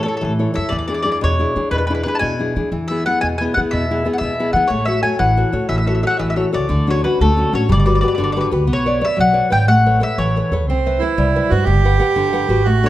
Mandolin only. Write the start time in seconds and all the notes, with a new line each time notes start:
0.03 A4
0.08 A4
0.17 A4
0.25 A4
0.55 E5
0.69 D5
0.79 D5
0.88 D5
0.94 D5
1.03 D5
1.12 D5
1.24 C#5
1.71 B4
1.78 B4
1.87 B4
1.95 B4
2.03 B4
2.08 B4
2.15 A5
2.19 G#5
2.88 E5
3.06 F#5
3.21 G#5
3.38 G#5
3.54 F#5
3.71 E5
4.13 F#5
4.18 E5
4.53 F#5
4.68 C#5
4.85 E5
5.03 G#5
5.19 F#5
5.69 E5
5.78 E5
5.87 E5
5.95 E5
6.03 E5 F#5
6.10 E5
6.17 E5
6.30 E5
6.36 E5
6.54 D5
6.90 C#5
7.04 B4
7.21 A4
7.55 C#5
7.72 D5
7.80 D5
7.86 D5
7.95 D5
8.01 D5
8.08 D5
8.15 D5
8.24 D5
8.32 D5
8.41 D5
8.73 C#5
9.05 E5
9.20 F#5
9.52 G5
9.68 F#5
10.03 E5
10.18 C#5
12.86 C#5